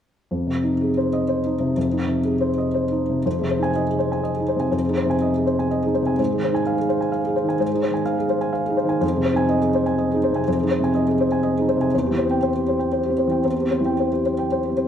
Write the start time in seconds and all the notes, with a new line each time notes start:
0.31 F2
0.47 C3
0.63 D#4
0.81 G#4
0.97 C5
1.13 D#5
1.28 C5
1.45 D#4
1.60 C3
1.77 F2
1.92 D#4
2.07 C3
2.24 G#4
2.41 C5
2.58 D#5
2.74 C5
2.91 D#4
3.09 C3
3.26 F2 C5
3.38 C3 G#4
3.50 C5
3.59 D#4 G#5
3.76 D#5
3.88 G#4
3.99 C5
4.12 G#5
4.23 D#5
4.36 G#4
4.40 D#4
4.48 C5
4.56 C3 G#5
4.71 F2 C5
4.85 D#4 G#4
4.97 C5
5.06 C3
5.10 G#5
5.22 D#5
5.34 G#4
5.46 C5
5.59 G#5
5.71 D#5
5.83 D#4 G#4
5.94 C5
6.02 C3
6.06 G#5
6.19 G#2 C5
6.31 G#4
6.35 D#3
6.44 C5
6.52 D#4 G#5
6.67 F5
6.78 G#4
6.89 C5
7.01 G#5
7.12 F5
7.24 G#4
7.28 D#4
7.36 C5
7.44 D#3
7.49 G#5
7.60 G#2 C5
7.71 D#4 G#4
7.83 C5
7.90 D#3 G#5
8.06 F5
8.18 G#4
8.29 C5
8.41 G#5
8.53 F5
8.65 G#4
8.70 D#4
8.77 C5
8.85 D#3
8.89 G#5
9.01 F2 C5
9.13 C3 G#4
9.24 C5
9.33 D#4 G#5
9.49 D#5
9.61 G#4
9.75 C5
9.86 G#5
9.98 D#5
10.11 D#4 G#4
10.24 C5
10.33 C3 G#5
10.47 F2 C5
10.60 D#4 G#4
10.71 C5
10.80 C3
10.84 G#5
10.95 D#5
11.08 G#4
11.20 C5
11.32 G#5
11.43 D#5
11.56 D#4 G#4
11.69 C5
11.77 C3
11.81 G#5
11.94 E2 C5
12.06 G4
12.11 E3
12.18 C5
12.25 C4
12.31 G5
12.43 C5
12.55 G4
12.68 C5
12.79 G5
12.92 C5
13.05 G4
13.10 C4
13.18 C5
13.27 E3 G5
13.44 E2 C5
13.57 G4
13.62 C4
13.71 C5
13.80 E3
13.85 G5
13.99 C5
14.13 G4
14.26 C5
14.39 G5
14.52 C5
14.65 G4
14.69 C4
14.77 C5